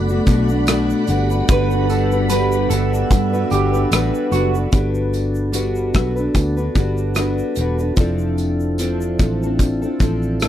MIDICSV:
0, 0, Header, 1, 7, 480
1, 0, Start_track
1, 0, Key_signature, 1, "major"
1, 0, Tempo, 811030
1, 881, Time_signature, 4, 2, 24, 8
1, 6204, End_track
2, 0, Start_track
2, 0, Title_t, "String machine"
2, 0, Program_c, 0, 50
2, 0, Note_on_c, 0, 69, 73
2, 0, Note_on_c, 0, 74, 71
2, 0, Note_on_c, 0, 78, 67
2, 0, Note_on_c, 0, 83, 84
2, 616, Note_off_c, 0, 69, 0
2, 645, Note_on_c, 0, 55, 82
2, 1581, Note_off_c, 0, 78, 0
2, 1604, Note_on_c, 0, 76, 80
2, 2777, Note_off_c, 0, 74, 0
2, 2782, Note_off_c, 0, 55, 0
2, 2783, Note_off_c, 0, 83, 0
2, 2791, Note_off_c, 0, 76, 0
2, 6204, End_track
3, 0, Start_track
3, 0, Title_t, "Clean electric guitar"
3, 0, Program_c, 1, 27
3, 1124, Note_on_c, 1, 69, 75
3, 1351, Note_off_c, 1, 69, 0
3, 1598, Note_on_c, 1, 69, 76
3, 1725, Note_off_c, 1, 69, 0
3, 2079, Note_on_c, 1, 67, 74
3, 2308, Note_off_c, 1, 67, 0
3, 6204, End_track
4, 0, Start_track
4, 0, Title_t, "Tonewheel organ"
4, 0, Program_c, 2, 16
4, 0, Note_on_c, 2, 59, 77
4, 0, Note_on_c, 2, 62, 69
4, 0, Note_on_c, 2, 66, 71
4, 0, Note_on_c, 2, 69, 75
4, 609, Note_off_c, 2, 59, 0
4, 614, Note_off_c, 2, 62, 0
4, 619, Note_off_c, 2, 66, 0
4, 626, Note_on_c, 2, 59, 78
4, 636, Note_on_c, 2, 62, 69
4, 644, Note_off_c, 2, 69, 0
4, 650, Note_on_c, 2, 78, 74
4, 656, Note_on_c, 2, 69, 81
4, 2771, Note_off_c, 2, 59, 0
4, 2775, Note_off_c, 2, 62, 0
4, 2782, Note_off_c, 2, 78, 0
4, 2785, Note_off_c, 2, 69, 0
4, 2788, Note_on_c, 2, 59, 62
4, 2797, Note_on_c, 2, 62, 62
4, 2809, Note_on_c, 2, 66, 61
4, 2819, Note_on_c, 2, 69, 73
4, 4692, Note_off_c, 2, 59, 0
4, 4696, Note_off_c, 2, 62, 0
4, 4699, Note_on_c, 2, 60, 69
4, 4703, Note_off_c, 2, 66, 0
4, 4707, Note_off_c, 2, 69, 0
4, 4710, Note_on_c, 2, 64, 63
4, 4719, Note_on_c, 2, 65, 62
4, 4730, Note_on_c, 2, 69, 72
4, 6204, Note_off_c, 2, 60, 0
4, 6204, Note_off_c, 2, 64, 0
4, 6204, Note_off_c, 2, 65, 0
4, 6204, Note_off_c, 2, 69, 0
4, 6204, End_track
5, 0, Start_track
5, 0, Title_t, "Steel-string acoustic guitar"
5, 0, Program_c, 3, 25
5, 0, Note_on_c, 3, 57, 61
5, 0, Note_on_c, 3, 62, 65
5, 61, Note_off_c, 3, 57, 0
5, 61, Note_on_c, 3, 66, 68
5, 65, Note_off_c, 3, 62, 0
5, 73, Note_on_c, 3, 62, 59
5, 85, Note_on_c, 3, 57, 52
5, 165, Note_off_c, 3, 66, 0
5, 167, Note_on_c, 3, 47, 71
5, 169, Note_off_c, 3, 57, 0
5, 171, Note_off_c, 3, 62, 0
5, 176, Note_on_c, 3, 57, 77
5, 184, Note_on_c, 3, 62, 66
5, 192, Note_on_c, 3, 66, 83
5, 287, Note_off_c, 3, 66, 0
5, 294, Note_on_c, 3, 66, 51
5, 296, Note_off_c, 3, 47, 0
5, 301, Note_off_c, 3, 57, 0
5, 302, Note_off_c, 3, 62, 0
5, 309, Note_on_c, 3, 62, 59
5, 316, Note_on_c, 3, 57, 49
5, 402, Note_off_c, 3, 66, 0
5, 404, Note_on_c, 3, 47, 82
5, 406, Note_off_c, 3, 57, 0
5, 409, Note_off_c, 3, 62, 0
5, 413, Note_on_c, 3, 57, 90
5, 419, Note_on_c, 3, 62, 89
5, 424, Note_on_c, 3, 66, 94
5, 638, Note_off_c, 3, 57, 0
5, 639, Note_off_c, 3, 62, 0
5, 640, Note_on_c, 3, 55, 63
5, 643, Note_off_c, 3, 47, 0
5, 646, Note_off_c, 3, 66, 0
5, 646, Note_on_c, 3, 62, 69
5, 653, Note_on_c, 3, 66, 69
5, 663, Note_on_c, 3, 71, 70
5, 767, Note_off_c, 3, 71, 0
5, 773, Note_off_c, 3, 55, 0
5, 774, Note_on_c, 3, 71, 52
5, 776, Note_off_c, 3, 62, 0
5, 779, Note_off_c, 3, 66, 0
5, 787, Note_on_c, 3, 66, 52
5, 798, Note_on_c, 3, 62, 40
5, 882, Note_off_c, 3, 71, 0
5, 885, Note_off_c, 3, 62, 0
5, 885, Note_on_c, 3, 55, 87
5, 887, Note_off_c, 3, 66, 0
5, 892, Note_on_c, 3, 62, 95
5, 894, Note_on_c, 3, 66, 93
5, 902, Note_on_c, 3, 71, 109
5, 1004, Note_off_c, 3, 71, 0
5, 1011, Note_on_c, 3, 71, 60
5, 1015, Note_off_c, 3, 55, 0
5, 1017, Note_off_c, 3, 66, 0
5, 1019, Note_off_c, 3, 62, 0
5, 1025, Note_on_c, 3, 66, 63
5, 1037, Note_on_c, 3, 62, 51
5, 1117, Note_off_c, 3, 62, 0
5, 1119, Note_on_c, 3, 55, 66
5, 1120, Note_off_c, 3, 71, 0
5, 1124, Note_on_c, 3, 62, 71
5, 1127, Note_off_c, 3, 66, 0
5, 1136, Note_on_c, 3, 66, 69
5, 1139, Note_on_c, 3, 71, 69
5, 1251, Note_off_c, 3, 71, 0
5, 1252, Note_off_c, 3, 55, 0
5, 1255, Note_off_c, 3, 62, 0
5, 1258, Note_on_c, 3, 71, 54
5, 1261, Note_off_c, 3, 66, 0
5, 1273, Note_on_c, 3, 66, 51
5, 1280, Note_on_c, 3, 62, 47
5, 1360, Note_on_c, 3, 55, 87
5, 1362, Note_off_c, 3, 62, 0
5, 1364, Note_off_c, 3, 71, 0
5, 1367, Note_off_c, 3, 66, 0
5, 1370, Note_on_c, 3, 62, 93
5, 1374, Note_on_c, 3, 66, 90
5, 1379, Note_on_c, 3, 71, 94
5, 1597, Note_off_c, 3, 55, 0
5, 1604, Note_on_c, 3, 55, 65
5, 1605, Note_off_c, 3, 62, 0
5, 1608, Note_off_c, 3, 66, 0
5, 1610, Note_off_c, 3, 71, 0
5, 1612, Note_on_c, 3, 62, 59
5, 1615, Note_on_c, 3, 66, 66
5, 1625, Note_on_c, 3, 71, 65
5, 1964, Note_off_c, 3, 71, 0
5, 1972, Note_on_c, 3, 71, 58
5, 1975, Note_off_c, 3, 55, 0
5, 1978, Note_off_c, 3, 66, 0
5, 1979, Note_off_c, 3, 62, 0
5, 1985, Note_on_c, 3, 66, 54
5, 1993, Note_on_c, 3, 62, 49
5, 2079, Note_off_c, 3, 62, 0
5, 2080, Note_off_c, 3, 71, 0
5, 2080, Note_on_c, 3, 55, 66
5, 2087, Note_off_c, 3, 66, 0
5, 2087, Note_on_c, 3, 62, 68
5, 2095, Note_on_c, 3, 66, 78
5, 2098, Note_on_c, 3, 71, 79
5, 2195, Note_off_c, 3, 71, 0
5, 2202, Note_on_c, 3, 71, 59
5, 2207, Note_off_c, 3, 66, 0
5, 2213, Note_off_c, 3, 55, 0
5, 2214, Note_on_c, 3, 66, 49
5, 2216, Note_off_c, 3, 62, 0
5, 2228, Note_on_c, 3, 62, 53
5, 2315, Note_off_c, 3, 62, 0
5, 2316, Note_off_c, 3, 71, 0
5, 2318, Note_on_c, 3, 55, 82
5, 2322, Note_off_c, 3, 66, 0
5, 2322, Note_on_c, 3, 62, 91
5, 2329, Note_on_c, 3, 66, 94
5, 2333, Note_on_c, 3, 71, 96
5, 2544, Note_off_c, 3, 55, 0
5, 2551, Note_on_c, 3, 55, 63
5, 2553, Note_off_c, 3, 62, 0
5, 2559, Note_off_c, 3, 66, 0
5, 2561, Note_on_c, 3, 62, 68
5, 2567, Note_off_c, 3, 71, 0
5, 2567, Note_on_c, 3, 66, 72
5, 2576, Note_on_c, 3, 71, 71
5, 2683, Note_off_c, 3, 71, 0
5, 2688, Note_off_c, 3, 55, 0
5, 2690, Note_on_c, 3, 71, 54
5, 2693, Note_off_c, 3, 62, 0
5, 2693, Note_off_c, 3, 66, 0
5, 2700, Note_on_c, 3, 66, 42
5, 2712, Note_on_c, 3, 62, 42
5, 2794, Note_off_c, 3, 62, 0
5, 2796, Note_on_c, 3, 55, 79
5, 2800, Note_off_c, 3, 66, 0
5, 2800, Note_off_c, 3, 71, 0
5, 2802, Note_on_c, 3, 62, 87
5, 2807, Note_on_c, 3, 66, 76
5, 2813, Note_on_c, 3, 71, 84
5, 3261, Note_off_c, 3, 55, 0
5, 3268, Note_on_c, 3, 55, 79
5, 3276, Note_off_c, 3, 62, 0
5, 3276, Note_off_c, 3, 66, 0
5, 3278, Note_on_c, 3, 62, 68
5, 3280, Note_off_c, 3, 71, 0
5, 3283, Note_on_c, 3, 66, 89
5, 3287, Note_on_c, 3, 71, 81
5, 3506, Note_off_c, 3, 55, 0
5, 3513, Note_on_c, 3, 55, 55
5, 3514, Note_off_c, 3, 62, 0
5, 3519, Note_off_c, 3, 66, 0
5, 3521, Note_on_c, 3, 62, 58
5, 3524, Note_off_c, 3, 71, 0
5, 3526, Note_on_c, 3, 66, 66
5, 3534, Note_on_c, 3, 71, 66
5, 3637, Note_off_c, 3, 71, 0
5, 3644, Note_on_c, 3, 71, 62
5, 3649, Note_off_c, 3, 66, 0
5, 3650, Note_off_c, 3, 55, 0
5, 3653, Note_off_c, 3, 62, 0
5, 3656, Note_on_c, 3, 66, 50
5, 3669, Note_on_c, 3, 62, 46
5, 3880, Note_off_c, 3, 71, 0
5, 3887, Note_on_c, 3, 71, 54
5, 3889, Note_off_c, 3, 66, 0
5, 3896, Note_on_c, 3, 66, 55
5, 3900, Note_off_c, 3, 62, 0
5, 3907, Note_on_c, 3, 62, 46
5, 3997, Note_on_c, 3, 55, 70
5, 3999, Note_off_c, 3, 71, 0
5, 4003, Note_off_c, 3, 62, 0
5, 4003, Note_off_c, 3, 66, 0
5, 4010, Note_on_c, 3, 62, 66
5, 4015, Note_on_c, 3, 66, 71
5, 4020, Note_on_c, 3, 71, 71
5, 4234, Note_off_c, 3, 55, 0
5, 4241, Note_on_c, 3, 55, 80
5, 4242, Note_off_c, 3, 62, 0
5, 4247, Note_off_c, 3, 66, 0
5, 4249, Note_on_c, 3, 62, 82
5, 4251, Note_off_c, 3, 71, 0
5, 4254, Note_on_c, 3, 66, 88
5, 4257, Note_on_c, 3, 71, 87
5, 4475, Note_off_c, 3, 55, 0
5, 4482, Note_off_c, 3, 62, 0
5, 4483, Note_on_c, 3, 55, 59
5, 4488, Note_off_c, 3, 66, 0
5, 4489, Note_on_c, 3, 62, 65
5, 4490, Note_off_c, 3, 71, 0
5, 4499, Note_on_c, 3, 66, 65
5, 4504, Note_on_c, 3, 71, 65
5, 4605, Note_off_c, 3, 71, 0
5, 4612, Note_on_c, 3, 71, 53
5, 4615, Note_off_c, 3, 55, 0
5, 4615, Note_off_c, 3, 66, 0
5, 4618, Note_off_c, 3, 62, 0
5, 4623, Note_on_c, 3, 66, 52
5, 4635, Note_on_c, 3, 62, 39
5, 4721, Note_off_c, 3, 71, 0
5, 4721, Note_on_c, 3, 53, 81
5, 4724, Note_off_c, 3, 62, 0
5, 4727, Note_off_c, 3, 66, 0
5, 4727, Note_on_c, 3, 60, 89
5, 4732, Note_on_c, 3, 62, 94
5, 4736, Note_on_c, 3, 69, 84
5, 5196, Note_off_c, 3, 53, 0
5, 5203, Note_on_c, 3, 53, 76
5, 5205, Note_off_c, 3, 60, 0
5, 5210, Note_off_c, 3, 69, 0
5, 5211, Note_on_c, 3, 60, 82
5, 5213, Note_off_c, 3, 62, 0
5, 5215, Note_on_c, 3, 62, 84
5, 5219, Note_on_c, 3, 69, 84
5, 5434, Note_off_c, 3, 53, 0
5, 5441, Note_on_c, 3, 53, 56
5, 5443, Note_off_c, 3, 60, 0
5, 5449, Note_off_c, 3, 62, 0
5, 5450, Note_on_c, 3, 60, 61
5, 5451, Note_off_c, 3, 69, 0
5, 5458, Note_on_c, 3, 62, 62
5, 5464, Note_on_c, 3, 69, 60
5, 5574, Note_off_c, 3, 53, 0
5, 5576, Note_off_c, 3, 69, 0
5, 5579, Note_off_c, 3, 60, 0
5, 5583, Note_off_c, 3, 62, 0
5, 5583, Note_on_c, 3, 69, 62
5, 5595, Note_on_c, 3, 62, 51
5, 5603, Note_on_c, 3, 60, 47
5, 5804, Note_off_c, 3, 69, 0
5, 5811, Note_on_c, 3, 69, 54
5, 5814, Note_off_c, 3, 62, 0
5, 5822, Note_on_c, 3, 62, 50
5, 5825, Note_off_c, 3, 60, 0
5, 5832, Note_on_c, 3, 60, 45
5, 5919, Note_off_c, 3, 60, 0
5, 5920, Note_on_c, 3, 53, 64
5, 5921, Note_off_c, 3, 69, 0
5, 5926, Note_off_c, 3, 62, 0
5, 5926, Note_on_c, 3, 60, 71
5, 5933, Note_on_c, 3, 62, 67
5, 5938, Note_on_c, 3, 69, 76
5, 6146, Note_off_c, 3, 53, 0
5, 6153, Note_off_c, 3, 60, 0
5, 6153, Note_on_c, 3, 53, 80
5, 6157, Note_off_c, 3, 62, 0
5, 6160, Note_on_c, 3, 60, 82
5, 6164, Note_off_c, 3, 69, 0
5, 6164, Note_on_c, 3, 62, 84
5, 6171, Note_on_c, 3, 69, 87
5, 6204, Note_off_c, 3, 53, 0
5, 6204, Note_off_c, 3, 60, 0
5, 6204, Note_off_c, 3, 62, 0
5, 6204, Note_off_c, 3, 69, 0
5, 6204, End_track
6, 0, Start_track
6, 0, Title_t, "Fingered electric bass"
6, 0, Program_c, 4, 33
6, 0, Note_on_c, 4, 30, 96
6, 112, Note_off_c, 4, 30, 0
6, 159, Note_on_c, 4, 35, 91
6, 544, Note_off_c, 4, 35, 0
6, 642, Note_on_c, 4, 31, 95
6, 834, Note_off_c, 4, 31, 0
6, 879, Note_on_c, 4, 31, 119
6, 1577, Note_off_c, 4, 31, 0
6, 1598, Note_on_c, 4, 31, 79
6, 1792, Note_off_c, 4, 31, 0
6, 1838, Note_on_c, 4, 43, 97
6, 2031, Note_off_c, 4, 43, 0
6, 2079, Note_on_c, 4, 31, 94
6, 2272, Note_off_c, 4, 31, 0
6, 2316, Note_on_c, 4, 33, 99
6, 2424, Note_off_c, 4, 33, 0
6, 2554, Note_on_c, 4, 30, 99
6, 2749, Note_off_c, 4, 30, 0
6, 2798, Note_on_c, 4, 31, 92
6, 3497, Note_off_c, 4, 31, 0
6, 3520, Note_on_c, 4, 35, 77
6, 3713, Note_off_c, 4, 35, 0
6, 3756, Note_on_c, 4, 38, 91
6, 3950, Note_off_c, 4, 38, 0
6, 3996, Note_on_c, 4, 31, 79
6, 4382, Note_off_c, 4, 31, 0
6, 4481, Note_on_c, 4, 28, 83
6, 4673, Note_off_c, 4, 28, 0
6, 4717, Note_on_c, 4, 29, 101
6, 5417, Note_off_c, 4, 29, 0
6, 5441, Note_on_c, 4, 33, 78
6, 5826, Note_off_c, 4, 33, 0
6, 5920, Note_on_c, 4, 33, 92
6, 6204, Note_off_c, 4, 33, 0
6, 6204, End_track
7, 0, Start_track
7, 0, Title_t, "Drums"
7, 52, Note_on_c, 9, 82, 59
7, 111, Note_off_c, 9, 82, 0
7, 156, Note_on_c, 9, 54, 46
7, 158, Note_on_c, 9, 42, 62
7, 158, Note_on_c, 9, 82, 60
7, 159, Note_on_c, 9, 36, 86
7, 215, Note_off_c, 9, 54, 0
7, 217, Note_off_c, 9, 42, 0
7, 217, Note_off_c, 9, 82, 0
7, 218, Note_off_c, 9, 36, 0
7, 289, Note_on_c, 9, 82, 51
7, 349, Note_off_c, 9, 82, 0
7, 396, Note_on_c, 9, 42, 73
7, 396, Note_on_c, 9, 54, 73
7, 396, Note_on_c, 9, 82, 75
7, 403, Note_on_c, 9, 37, 103
7, 455, Note_off_c, 9, 42, 0
7, 455, Note_off_c, 9, 54, 0
7, 455, Note_off_c, 9, 82, 0
7, 462, Note_off_c, 9, 37, 0
7, 532, Note_on_c, 9, 82, 53
7, 591, Note_off_c, 9, 82, 0
7, 635, Note_on_c, 9, 42, 55
7, 635, Note_on_c, 9, 82, 53
7, 642, Note_on_c, 9, 54, 31
7, 694, Note_off_c, 9, 42, 0
7, 694, Note_off_c, 9, 82, 0
7, 701, Note_off_c, 9, 54, 0
7, 770, Note_on_c, 9, 82, 53
7, 829, Note_off_c, 9, 82, 0
7, 880, Note_on_c, 9, 42, 74
7, 880, Note_on_c, 9, 82, 77
7, 881, Note_on_c, 9, 36, 112
7, 939, Note_off_c, 9, 42, 0
7, 939, Note_off_c, 9, 82, 0
7, 940, Note_off_c, 9, 36, 0
7, 1010, Note_on_c, 9, 82, 58
7, 1069, Note_off_c, 9, 82, 0
7, 1122, Note_on_c, 9, 42, 53
7, 1122, Note_on_c, 9, 54, 51
7, 1122, Note_on_c, 9, 82, 51
7, 1181, Note_off_c, 9, 42, 0
7, 1181, Note_off_c, 9, 82, 0
7, 1182, Note_off_c, 9, 54, 0
7, 1251, Note_on_c, 9, 82, 52
7, 1311, Note_off_c, 9, 82, 0
7, 1358, Note_on_c, 9, 42, 73
7, 1358, Note_on_c, 9, 54, 83
7, 1358, Note_on_c, 9, 82, 76
7, 1417, Note_off_c, 9, 42, 0
7, 1417, Note_off_c, 9, 82, 0
7, 1418, Note_off_c, 9, 54, 0
7, 1489, Note_on_c, 9, 82, 64
7, 1548, Note_off_c, 9, 82, 0
7, 1601, Note_on_c, 9, 42, 59
7, 1601, Note_on_c, 9, 82, 57
7, 1603, Note_on_c, 9, 54, 51
7, 1660, Note_off_c, 9, 42, 0
7, 1660, Note_off_c, 9, 82, 0
7, 1662, Note_off_c, 9, 54, 0
7, 1737, Note_on_c, 9, 82, 61
7, 1796, Note_off_c, 9, 82, 0
7, 1838, Note_on_c, 9, 54, 51
7, 1839, Note_on_c, 9, 36, 85
7, 1841, Note_on_c, 9, 42, 71
7, 1841, Note_on_c, 9, 82, 74
7, 1898, Note_off_c, 9, 36, 0
7, 1898, Note_off_c, 9, 54, 0
7, 1900, Note_off_c, 9, 42, 0
7, 1900, Note_off_c, 9, 82, 0
7, 1975, Note_on_c, 9, 82, 58
7, 2035, Note_off_c, 9, 82, 0
7, 2073, Note_on_c, 9, 54, 43
7, 2082, Note_on_c, 9, 42, 60
7, 2082, Note_on_c, 9, 82, 60
7, 2132, Note_off_c, 9, 54, 0
7, 2141, Note_off_c, 9, 42, 0
7, 2141, Note_off_c, 9, 82, 0
7, 2214, Note_on_c, 9, 82, 55
7, 2273, Note_off_c, 9, 82, 0
7, 2318, Note_on_c, 9, 54, 79
7, 2319, Note_on_c, 9, 42, 76
7, 2319, Note_on_c, 9, 82, 70
7, 2327, Note_on_c, 9, 37, 94
7, 2377, Note_off_c, 9, 54, 0
7, 2378, Note_off_c, 9, 42, 0
7, 2378, Note_off_c, 9, 82, 0
7, 2386, Note_off_c, 9, 37, 0
7, 2452, Note_on_c, 9, 82, 49
7, 2512, Note_off_c, 9, 82, 0
7, 2557, Note_on_c, 9, 42, 58
7, 2557, Note_on_c, 9, 82, 60
7, 2562, Note_on_c, 9, 54, 30
7, 2616, Note_off_c, 9, 42, 0
7, 2616, Note_off_c, 9, 82, 0
7, 2621, Note_off_c, 9, 54, 0
7, 2690, Note_on_c, 9, 82, 53
7, 2749, Note_off_c, 9, 82, 0
7, 2795, Note_on_c, 9, 42, 72
7, 2795, Note_on_c, 9, 82, 65
7, 2798, Note_on_c, 9, 36, 99
7, 2855, Note_off_c, 9, 42, 0
7, 2855, Note_off_c, 9, 82, 0
7, 2857, Note_off_c, 9, 36, 0
7, 2926, Note_on_c, 9, 82, 44
7, 2986, Note_off_c, 9, 82, 0
7, 3039, Note_on_c, 9, 42, 48
7, 3039, Note_on_c, 9, 82, 51
7, 3042, Note_on_c, 9, 54, 45
7, 3098, Note_off_c, 9, 42, 0
7, 3098, Note_off_c, 9, 82, 0
7, 3101, Note_off_c, 9, 54, 0
7, 3165, Note_on_c, 9, 82, 47
7, 3224, Note_off_c, 9, 82, 0
7, 3274, Note_on_c, 9, 42, 69
7, 3274, Note_on_c, 9, 82, 65
7, 3277, Note_on_c, 9, 54, 66
7, 3333, Note_off_c, 9, 42, 0
7, 3333, Note_off_c, 9, 82, 0
7, 3337, Note_off_c, 9, 54, 0
7, 3406, Note_on_c, 9, 82, 50
7, 3465, Note_off_c, 9, 82, 0
7, 3516, Note_on_c, 9, 42, 52
7, 3516, Note_on_c, 9, 82, 49
7, 3519, Note_on_c, 9, 36, 83
7, 3521, Note_on_c, 9, 54, 43
7, 3527, Note_on_c, 9, 37, 92
7, 3575, Note_off_c, 9, 42, 0
7, 3575, Note_off_c, 9, 82, 0
7, 3578, Note_off_c, 9, 36, 0
7, 3580, Note_off_c, 9, 54, 0
7, 3586, Note_off_c, 9, 37, 0
7, 3652, Note_on_c, 9, 82, 54
7, 3711, Note_off_c, 9, 82, 0
7, 3756, Note_on_c, 9, 36, 77
7, 3756, Note_on_c, 9, 42, 72
7, 3756, Note_on_c, 9, 82, 69
7, 3760, Note_on_c, 9, 54, 46
7, 3815, Note_off_c, 9, 42, 0
7, 3815, Note_off_c, 9, 82, 0
7, 3816, Note_off_c, 9, 36, 0
7, 3819, Note_off_c, 9, 54, 0
7, 3890, Note_on_c, 9, 82, 52
7, 3949, Note_off_c, 9, 82, 0
7, 3996, Note_on_c, 9, 54, 45
7, 3998, Note_on_c, 9, 36, 81
7, 3999, Note_on_c, 9, 42, 56
7, 3999, Note_on_c, 9, 82, 54
7, 4055, Note_off_c, 9, 54, 0
7, 4057, Note_off_c, 9, 36, 0
7, 4058, Note_off_c, 9, 42, 0
7, 4058, Note_off_c, 9, 82, 0
7, 4128, Note_on_c, 9, 82, 50
7, 4187, Note_off_c, 9, 82, 0
7, 4231, Note_on_c, 9, 42, 70
7, 4231, Note_on_c, 9, 82, 71
7, 4236, Note_on_c, 9, 54, 64
7, 4238, Note_on_c, 9, 37, 91
7, 4290, Note_off_c, 9, 42, 0
7, 4290, Note_off_c, 9, 82, 0
7, 4295, Note_off_c, 9, 54, 0
7, 4298, Note_off_c, 9, 37, 0
7, 4369, Note_on_c, 9, 82, 47
7, 4429, Note_off_c, 9, 82, 0
7, 4471, Note_on_c, 9, 42, 52
7, 4471, Note_on_c, 9, 82, 55
7, 4479, Note_on_c, 9, 54, 29
7, 4530, Note_off_c, 9, 42, 0
7, 4530, Note_off_c, 9, 82, 0
7, 4538, Note_off_c, 9, 54, 0
7, 4608, Note_on_c, 9, 82, 49
7, 4667, Note_off_c, 9, 82, 0
7, 4714, Note_on_c, 9, 42, 65
7, 4714, Note_on_c, 9, 82, 67
7, 4718, Note_on_c, 9, 36, 106
7, 4727, Note_on_c, 9, 54, 30
7, 4773, Note_off_c, 9, 42, 0
7, 4773, Note_off_c, 9, 82, 0
7, 4777, Note_off_c, 9, 36, 0
7, 4786, Note_off_c, 9, 54, 0
7, 4844, Note_on_c, 9, 82, 47
7, 4904, Note_off_c, 9, 82, 0
7, 4959, Note_on_c, 9, 42, 48
7, 4959, Note_on_c, 9, 82, 46
7, 4960, Note_on_c, 9, 54, 43
7, 5018, Note_off_c, 9, 42, 0
7, 5018, Note_off_c, 9, 82, 0
7, 5019, Note_off_c, 9, 54, 0
7, 5090, Note_on_c, 9, 82, 44
7, 5149, Note_off_c, 9, 82, 0
7, 5197, Note_on_c, 9, 54, 65
7, 5201, Note_on_c, 9, 42, 70
7, 5201, Note_on_c, 9, 82, 66
7, 5256, Note_off_c, 9, 54, 0
7, 5261, Note_off_c, 9, 42, 0
7, 5261, Note_off_c, 9, 82, 0
7, 5332, Note_on_c, 9, 82, 55
7, 5391, Note_off_c, 9, 82, 0
7, 5442, Note_on_c, 9, 36, 94
7, 5442, Note_on_c, 9, 42, 54
7, 5442, Note_on_c, 9, 54, 44
7, 5442, Note_on_c, 9, 82, 53
7, 5501, Note_off_c, 9, 36, 0
7, 5501, Note_off_c, 9, 42, 0
7, 5501, Note_off_c, 9, 82, 0
7, 5502, Note_off_c, 9, 54, 0
7, 5581, Note_on_c, 9, 82, 57
7, 5640, Note_off_c, 9, 82, 0
7, 5677, Note_on_c, 9, 36, 81
7, 5679, Note_on_c, 9, 42, 68
7, 5679, Note_on_c, 9, 54, 47
7, 5679, Note_on_c, 9, 82, 73
7, 5736, Note_off_c, 9, 36, 0
7, 5738, Note_off_c, 9, 42, 0
7, 5738, Note_off_c, 9, 54, 0
7, 5738, Note_off_c, 9, 82, 0
7, 5815, Note_on_c, 9, 82, 54
7, 5875, Note_off_c, 9, 82, 0
7, 5915, Note_on_c, 9, 54, 44
7, 5920, Note_on_c, 9, 36, 89
7, 5924, Note_on_c, 9, 42, 57
7, 5924, Note_on_c, 9, 82, 53
7, 5974, Note_off_c, 9, 54, 0
7, 5979, Note_off_c, 9, 36, 0
7, 5983, Note_off_c, 9, 42, 0
7, 5983, Note_off_c, 9, 82, 0
7, 6053, Note_on_c, 9, 82, 48
7, 6112, Note_off_c, 9, 82, 0
7, 6153, Note_on_c, 9, 54, 67
7, 6162, Note_on_c, 9, 42, 71
7, 6162, Note_on_c, 9, 82, 72
7, 6169, Note_on_c, 9, 37, 100
7, 6204, Note_off_c, 9, 37, 0
7, 6204, Note_off_c, 9, 42, 0
7, 6204, Note_off_c, 9, 54, 0
7, 6204, Note_off_c, 9, 82, 0
7, 6204, End_track
0, 0, End_of_file